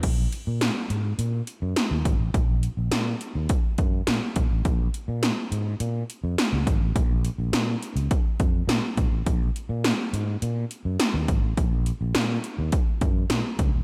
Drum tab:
CC |x---------------|----------------|----------------|----------------|
HH |x-x-x-x-x-x-x-x-|x-x-x-x-x-x-x-x-|x-x-x-x-x-x-x-x-|x-x-x-xxx-x-x-x-|
SD |----o-------o---|----o-------o---|----o-------o---|----o-------o---|
BD |o-------------o-|o-------o-o---o-|o-------------o-|o-------o-o---o-|

CC |----------------|----------------|
HH |x-x-x-x-x-x-x-x-|x-x-x-x-x-x-x-x-|
SD |----o-------o---|----o-------o---|
BD |o-------------o-|o-------o-o---o-|